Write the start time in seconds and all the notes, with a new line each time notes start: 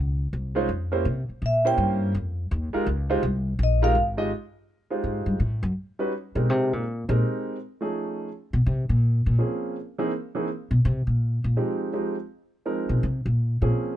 Already playing: C#2
0.33 C2
0.55 G#3 C#4 D#4 F4 C5
0.69 F2
0.92 A#3 C#4 E4 G4 C5
1.05 C3
1.29 muted upright bass stroke
1.42 A#2
1.46 E5
1.65 A#3 C#4 E4 G4 C5 G5
1.78 G2
2.14 F2
2.51 D#2
2.73 G#3 D#4 F4 G4 A#4, muted upright bass stroke
2.86 C#2
3.10 G#3 D#4 F4 G4 C5
3.23 C2
3.59 A#1
3.63 D#5
3.82 G#3 D#4 F4 G4 A#4 F5
3.95 G#1
4.17 G#3 D#4 F4 G4 D#5
4.90 G#3 D#4 F4 G4 C5
5.04 G#2
5.26 G2
5.40 A2
5.63 F#2
5.99 G3 C#4 D#4 F#4 B4
6.35 B2 G#3 C4 D#4 G4 A#4
6.50 C3
6.73 A#2
7.09 A#2 G#3 C4 D#4 G4 A#4
7.81 F3 A3 C#4 D#4 G#4
8.53 B2
8.66 C3
8.89 A#2
9.26 A#2
9.38 F3 A#3 C4 C#4 G#4
9.98 E3 A#3 C4 D#4 G#4
10.35 E3 A#3 C4 D#4 G#4
10.71 B2
10.85 C3
11.07 A#2
11.44 A#2
11.56 F3 G#3 C4 D#4 G4
11.93 F3 G#3 C4 D#4 G4
12.65 F3 G#3 C4 D#4 A#4
12.89 B2
13.03 C3
13.26 A#2
13.62 A#2 F3 A#3 C4 C#4 G#4